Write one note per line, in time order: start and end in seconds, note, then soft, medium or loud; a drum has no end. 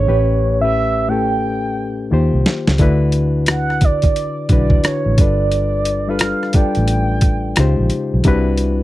0.00 0.61 C#5 loud
0.07 2.08 A1 medium
0.07 0.46 A2 medium
0.07 0.47 A3 medium
0.07 0.47 C#4 medium
0.07 0.47 G4 medium
0.07 0.47 B4 medium
0.61 0.99 A2 medium
0.61 0.99 A3 soft
0.61 1.00 C#4 medium
0.61 1.00 G4 medium
0.61 1.00 B4 medium
0.61 1.10 E5 loud
1.09 2.11 A2 medium
1.09 2.12 A3 medium
1.09 2.12 C#4 soft
1.09 2.12 G4 soft
1.09 2.13 A4 medium
1.09 2.45 G5 medium
2.11 2.30 D#2 medium
2.11 2.69 D#3 medium
2.11 2.69 A#3 medium
2.11 2.69 F4 medium
2.11 2.70 G4 medium
2.11 2.70 C5 medium
2.34 2.44 C2 medium
2.46 snare medium
2.67 2.78 C#2 medium
2.67 snare medium
2.78 4.12 D2 medium
2.78 3.82 D3 loud
2.78 3.82 D4 medium
2.78 3.83 E4 medium
2.78 3.83 F#4 medium
2.78 3.83 B4 loud
2.78 kick medium
2.78 closed hi-hat medium
3.12 closed hi-hat medium
3.46 3.86 F#5 loud
3.46 cross-stick loud
3.46 closed hi-hat medium
3.70 cross-stick soft
3.81 4.51 D5 medium
3.81 kick medium
3.81 closed hi-hat medium
4.02 kick medium
4.02 closed hi-hat soft
4.16 closed hi-hat medium
4.49 4.79 B1 medium
4.49 5.18 D3 medium
4.49 5.18 D4 medium
4.49 5.19 E4 medium
4.49 5.19 F#4 medium
4.49 5.19 B4 medium
4.49 4.88 D5 medium
4.49 kick medium
4.49 closed hi-hat soft
4.70 kick medium
4.84 5.22 C#5 medium
4.84 muted fingered electric bass stroke soft
4.84 cross-stick loud
4.84 closed hi-hat medium
5.06 5.16 A1 medium
5.18 6.32 G1 medium
5.18 5.86 G3 medium
5.18 5.87 D4 medium
5.18 5.87 F4 medium
5.18 5.88 A4 soft
5.18 5.88 B4 medium
5.18 6.10 D5 medium
5.18 kick medium
5.18 closed hi-hat medium
5.52 closed hi-hat medium
5.85 closed hi-hat medium
6.08 6.45 G3 medium
6.08 6.45 D4 medium
6.08 6.46 F4 medium
6.08 6.46 A4 medium
6.08 6.46 B4 medium
6.08 6.57 F5 loud
6.19 cross-stick loud
6.19 closed hi-hat medium
6.43 cross-stick soft
6.53 7.57 G3 medium
6.53 7.57 D4 medium
6.53 7.57 F4 medium
6.53 7.58 A4 medium
6.53 7.91 G5 loud
6.53 muted fingered electric bass stroke soft
6.53 kick medium
6.53 closed hi-hat medium
6.58 7.58 D5 medium
6.75 7.53 A1 medium
6.75 closed hi-hat soft
6.88 closed hi-hat medium
7.21 kick medium
7.21 closed hi-hat medium
7.56 7.75 C#2 medium
7.56 8.15 C#3 medium
7.56 8.15 G#3 medium
7.56 8.15 D#4 medium
7.56 8.16 F4 medium
7.56 8.16 G4 medium
7.56 cross-stick loud
7.56 closed hi-hat medium
7.60 8.16 C5 medium
7.79 7.89 A#1 medium
7.90 closed hi-hat medium
8.14 8.24 B1 medium
8.24 8.83 C2 medium
8.24 8.83 C3 loud
8.24 8.83 G3 medium
8.24 8.83 D4 medium
8.24 8.83 E4 medium
8.24 8.83 F#4 medium
8.24 kick medium
8.24 closed hi-hat medium
8.28 8.83 B4 loud
8.57 closed hi-hat medium